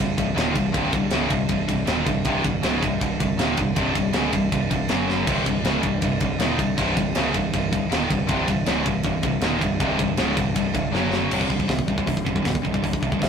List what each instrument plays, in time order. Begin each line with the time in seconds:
Already playing: distorted electric guitar C2 G2
0.00 picked electric bass C1
0.18 picked electric bass C1, distorted electric guitar C2 G2, kick, ride
0.36 picked electric bass D#1, distorted electric guitar D#2 A#2 D#3, snare, ride
0.53 picked electric bass C1, distorted electric guitar C2 G2, kick, ride
0.72 picked electric bass C1, distorted electric guitar C2 G2 C3, kick, ride
0.92 picked electric bass C1, distorted electric guitar C2 G2, kick, ride
1.10 picked electric bass C#1, distorted electric guitar C#2 G#2 C#3, snare, ride
1.29 picked electric bass C1, distorted electric guitar C2 G2, kick, ride
1.49 picked electric bass C1, distorted electric guitar C2 G2, kick, ride
1.68 picked electric bass C1, distorted electric guitar C2 G2, kick, ride
1.87 picked electric bass D#1, distorted electric guitar D#2 A#2 D#3, snare, ride
2.06 picked electric bass C1, distorted electric guitar C2 G2, kick, ride
2.25 picked electric bass C1, distorted electric guitar C2 G2 C3, kick, ride
2.44 picked electric bass C1, distorted electric guitar C2 G2, kick, ride
2.63 picked electric bass C#1, distorted electric guitar C#2 G#2 C#3, snare, ride
2.83 picked electric bass C1, distorted electric guitar C2 G2, kick, ride
3.01 picked electric bass C1, distorted electric guitar C2 G2, kick, ride
3.20 picked electric bass C1, distorted electric guitar C2 G2, kick, ride
3.37 picked electric bass D#1, distorted electric guitar D#2 A#2 D#3, snare, ride
3.57 picked electric bass C1, distorted electric guitar C2 G2, kick, ride
3.76 picked electric bass C1, distorted electric guitar C2 G2 C3, kick, ride
3.95 picked electric bass C1, distorted electric guitar C2 G2, kick, ride
4.13 picked electric bass C#1, distorted electric guitar C#2 G#2 C#3, snare, ride
4.33 picked electric bass C1, distorted electric guitar C2 G2, kick, ride
4.52 picked electric bass C1, distorted electric guitar C2 G2, kick, ride
4.70 picked electric bass C1, distorted electric guitar C2 G2, kick, ride
4.88 picked electric bass F#1, distorted electric guitar F#2 C#3 F#3, snare, ride
5.10 snare
5.27 picked electric bass C1, distorted electric guitar C2 G2 C3, kick, crash, ride
5.46 picked electric bass C1, distorted electric guitar C2 G2, kick, ride
5.64 picked electric bass C#1, distorted electric guitar C#2 G#2 C#3, snare, ride
5.83 picked electric bass C1, distorted electric guitar C2 G2, kick, ride
6.01 picked electric bass C1, distorted electric guitar C2 G2, kick, ride
6.20 picked electric bass C1, distorted electric guitar C2 G2, kick, ride
6.39 picked electric bass D#1, distorted electric guitar D#2 A#2 D#3, snare, ride
6.58 picked electric bass C1, distorted electric guitar C2 G2, kick, ride
6.77 picked electric bass C1, distorted electric guitar C2 G2 C3, kick, ride
6.96 picked electric bass C1, distorted electric guitar C2 G2, kick, ride
7.15 picked electric bass C#1, distorted electric guitar C#2 G#2 C#3, snare, ride
7.34 picked electric bass C1, distorted electric guitar C2 G2, kick, ride
7.53 picked electric bass C1, distorted electric guitar C2 G2, kick, ride
7.71 picked electric bass C1, distorted electric guitar C2 G2, kick, ride
7.89 picked electric bass D#1, distorted electric guitar D#2 A#2 D#3, snare, ride
8.09 picked electric bass C1, distorted electric guitar C2 G2, kick, ride
8.27 picked electric bass C1, distorted electric guitar C2 G2 C3, kick, ride
8.48 picked electric bass C1, distorted electric guitar C2 G2, kick, ride
8.66 picked electric bass C#1, distorted electric guitar C#2 G#2 C#3, snare, ride
8.85 picked electric bass C1, distorted electric guitar C2 G2, kick, ride
9.03 picked electric bass C1, distorted electric guitar C2 G2, kick, ride
9.22 picked electric bass C1, distorted electric guitar C2 G2, kick, ride
9.41 picked electric bass D#1, distorted electric guitar D#2 A#2 D#3, snare, ride
9.61 picked electric bass C1, distorted electric guitar C2 G2, kick, ride
9.80 picked electric bass C1, distorted electric guitar C2 G2 C3, kick, ride
9.98 picked electric bass C1, distorted electric guitar C2 G2, kick, ride
10.17 picked electric bass C#1, distorted electric guitar C#2 G#2 C#3, snare, ride
10.37 picked electric bass C1, distorted electric guitar C2 G2, kick, ride
10.54 picked electric bass C1, distorted electric guitar C2 G2, kick, ride
10.73 picked electric bass C1, distorted electric guitar C2 G2, kick, ride
10.92 picked electric bass F#1, distorted electric guitar F#2 C#3 F#3, snare
11.13 snare
11.31 picked electric bass C1, distorted electric guitar C2 G2 C3, kick, crash
11.41 kick
11.48 picked electric bass C1, distorted electric guitar C2 G2, kick
11.59 distorted electric guitar C2 G2, kick
11.67 picked electric bass C1, distorted electric guitar C2 G2, kick, snare, open hi-hat
11.79 kick
11.87 picked electric bass C1, distorted electric guitar C2 G2, kick
11.98 distorted electric guitar C2 G2, kick
12.06 picked electric bass C1, distorted electric guitar C2 G2, kick, open hi-hat
12.17 kick
12.26 picked electric bass C1, distorted electric guitar C2 G2, kick
12.35 distorted electric guitar C2 G2, kick
12.42 picked electric bass C1, distorted electric guitar C2 G2, kick, snare, open hi-hat
12.55 kick
12.62 picked electric bass C1, distorted electric guitar C2 G2, kick
12.72 distorted electric guitar C2 G2, kick
12.82 picked electric bass C1, distorted electric guitar C2 G2, kick, open hi-hat
12.93 kick
13.01 picked electric bass C1, distorted electric guitar C2 G2, kick
13.10 distorted electric guitar C2 G2, kick
13.19 picked electric bass D#1, distorted electric guitar C2 G2, kick, open hi-hat
13.23 distorted electric guitar C2 G2, snare